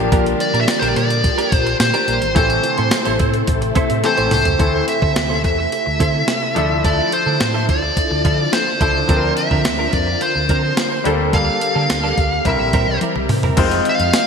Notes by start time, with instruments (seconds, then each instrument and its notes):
Already playing: string machine D3 G3 F4 A#4, grand piano F3 A#3 D4 G4
0.12 fingered electric bass A#1, clean electric guitar A#3 D4 G4 A#4, kick, closed hi-hat
0.26 muted clean electric guitar stroke, closed hi-hat
0.40 lead electric guitar D5, muted clean electric guitar stroke, closed hi-hat
0.54 fingered electric bass A#2, clean electric guitar A#3 D4 G4 A#4, closed hi-hat
0.61 lead electric guitar E5
0.68 lead electric guitar D5, muted clean electric guitar stroke, snare, closed hi-hat, tambourine
0.79 fingered electric bass A#1, clean electric guitar A#3 D4 G4 A#4, lead electric guitar C5, closed hi-hat
0.88 lead electric guitar D5
0.96 fingered electric bass A#2, clean electric guitar A#3 D4 G4 A#4, lead electric guitar D5, closed hi-hat
1.10 muted clean electric guitar stroke, closed hi-hat
1.24 muted clean electric guitar stroke, kick, closed hi-hat
1.38 clean electric guitar A#3 D4 G4 A#4, closed hi-hat
1.52 fingered electric bass A#1, lead electric guitar C5, muted clean electric guitar stroke, kick, closed hi-hat
1.66 muted clean electric guitar stroke, closed hi-hat
1.80 fingered electric bass A#2, lead electric guitar C5, muted clean electric guitar stroke, snare, closed hi-hat, tambourine
1.94 clean electric guitar A#3 D4 G4 A#4, closed hi-hat
2.08 fingered electric bass A#1, clean electric guitar A#3 D4 G4 A#4, closed hi-hat
2.22 fingered electric bass G#1, muted clean electric guitar stroke, closed hi-hat
2.35 fingered electric bass A1, string machine C3 A3 E4 A4, grand piano E3 A3 C4 A4, clean electric guitar C4 E4 A4 C5, lead electric guitar C5, kick, closed hi-hat
2.50 muted clean electric guitar stroke, closed hi-hat
2.64 muted clean electric guitar stroke, closed hi-hat
2.78 fingered electric bass A2, clean electric guitar C4 E4 A4 C5, closed hi-hat
2.91 snare, closed hi-hat, tambourine
3.05 fingered electric bass A1, clean electric guitar C4 E4 A4 C5, closed hi-hat
3.19 fingered electric bass A2, clean electric guitar C4 E4 A4 C5, kick, closed hi-hat
3.33 muted clean electric guitar stroke, closed hi-hat
3.47 fingered electric bass A1, muted clean electric guitar stroke, kick, closed hi-hat
3.62 muted clean electric guitar stroke, closed hi-hat
3.75 clean electric guitar C4 E4 A4 C5, grand piano E5, muted fingered electric bass stroke, kick, closed hi-hat
3.90 fingered electric bass A2, muted clean electric guitar stroke, closed hi-hat
4.04 grand piano E3 A3 C4 A4 A5, lead electric guitar C5, muted clean electric guitar stroke, snare, closed hi-hat
4.17 fingered electric bass A1, clean electric guitar C4 E4 A4 C5, closed hi-hat
4.31 fingered electric bass C2, clean electric guitar C4 E4 A4 C5, lead electric guitar C5, mid tom, open hi-hat
4.45 fingered electric bass C#2, muted clean electric guitar stroke, closed hi-hat, floor tom
4.59 fingered electric bass D2, string machine C3 A3 E4 A4, grand piano E3 A3 C4 A4, clean electric guitar C4 E4 A4 C5, kick, closed hi-hat
4.88 lead electric guitar E5, muted clean electric guitar stroke, closed hi-hat
5.02 fingered electric bass D3, clean electric guitar C4 E4 A4 C5, kick
5.16 fingered electric bass D2, muted clean electric guitar stroke, snare, closed hi-hat
5.30 clean electric guitar C4 E4 A4 C5
5.44 fingered electric bass E2, lead electric guitar E5, muted clean electric guitar stroke, kick, closed hi-hat
5.59 muted clean electric guitar stroke
5.72 muted clean electric guitar stroke, closed hi-hat
5.86 fingered electric bass D2, muted clean electric guitar stroke
6.00 fingered electric bass D3, clean electric guitar C4 E4 A4 C5, kick, closed hi-hat
6.14 muted clean electric guitar stroke
6.28 muted clean electric guitar stroke, snare, closed hi-hat
6.42 muted clean electric guitar stroke
6.55 fingered electric bass D2, string machine D3 F3 A4, grand piano F3 D4 E4 A4, clean electric guitar F3 A3 E4 A4, closed hi-hat
6.70 muted clean electric guitar stroke
6.84 clean electric guitar F3 A3 E4 A4, lead electric guitar D5, kick, closed hi-hat
7.12 lead electric guitar C5, muted clean electric guitar stroke, closed hi-hat
7.26 fingered electric bass D3, clean electric guitar F3 A3 E4 A4
7.40 fingered electric bass A2, snare, closed hi-hat
7.54 clean electric guitar F3 A3 E4 A4
7.69 fingered electric bass D2, lead electric guitar D5, muted clean electric guitar stroke, kick, closed hi-hat
7.82 muted clean electric guitar stroke
7.97 muted clean electric guitar stroke, kick, closed hi-hat
8.11 fingered electric bass D2, muted clean electric guitar stroke
8.25 fingered electric bass D3, clean electric guitar F3 A3 E4 A4, kick, closed hi-hat
8.39 muted clean electric guitar stroke
8.53 lead electric guitar C5, muted clean electric guitar stroke, snare, closed hi-hat
8.67 muted clean electric guitar stroke
8.81 fingered electric bass C#2, grand piano F3 D4 E4 A4, clean electric guitar F3 A3 E4 A4, lead electric guitar C5, kick, closed hi-hat
8.95 muted clean electric guitar stroke
9.08 fingered electric bass D2, grand piano F3 C4 D4 A4, clean electric guitar F3 C4 D4 A#4, string machine C4 F4 A#4, kick, closed hi-hat
9.17 grand piano A#4
9.37 lead electric guitar E5, muted clean electric guitar stroke, closed hi-hat
9.51 fingered electric bass D3, clean electric guitar F3 C4 D4 A#4, kick
9.65 fingered electric bass D2, snare, closed hi-hat
9.79 clean electric guitar F3 C4 D4 A#4
9.93 fingered electric bass F2, lead electric guitar D5, kick, closed hi-hat
10.07 muted clean electric guitar stroke
10.21 lead electric guitar C5, muted clean electric guitar stroke, closed hi-hat
10.35 fingered electric bass D2, muted clean electric guitar stroke
10.49 fingered electric bass D3, clean electric guitar F3 C4 D4 A#4, kick, closed hi-hat
10.63 muted clean electric guitar stroke
10.77 muted clean electric guitar stroke, snare, closed hi-hat
10.92 muted clean electric guitar stroke
11.04 fingered electric bass D2, grand piano G3 A#3 D4 A4, clean electric guitar G3 A#3 D4 A4, string machine A#3 G4 A4, closed hi-hat
11.19 muted clean electric guitar stroke
11.33 clean electric guitar G3 A#3 D4 A4, lead electric guitar F5, kick, closed hi-hat
11.61 muted clean electric guitar stroke, closed hi-hat
11.75 fingered electric bass D3, clean electric guitar G3 A#3 D4 A4
11.90 fingered electric bass D2, muted clean electric guitar stroke, snare, closed hi-hat
12.04 clean electric guitar G3 A#3 D4 A4
12.18 fingered electric bass D2, muted clean electric guitar stroke, kick, closed hi-hat
12.32 muted clean electric guitar stroke
12.45 fingered electric bass C2, string machine E3 C4 A#4, grand piano G3 C4 E4 A#4, lead electric guitar E5, muted clean electric guitar stroke, kick, closed hi-hat
12.60 fingered electric bass A#1, muted clean electric guitar stroke
12.73 fingered electric bass A#2, clean electric guitar G3 C4 E4 A#4, kick, closed hi-hat
12.88 fingered electric bass C2, muted clean electric guitar stroke
13.01 clean electric guitar G3 C4 E4 A#4, muted fingered electric bass stroke, closed hi-hat, high tom
13.16 fingered electric bass C2, muted clean electric guitar stroke, mid tom
13.29 fingered electric bass C3, muted clean electric guitar stroke, mid tom, open hi-hat
13.43 clean electric guitar G3 C4 E4 A#4, floor tom
13.57 fingered electric bass F1, string machine D#3 G#3 C4 F4, grand piano G#3 C4 D#4 F4 C5, kick, closed hi-hat, crash
13.71 closed hi-hat
13.85 closed hi-hat
13.89 lead electric guitar F5
13.99 fingered electric bass F2, closed hi-hat
14.13 snare, closed hi-hat, tambourine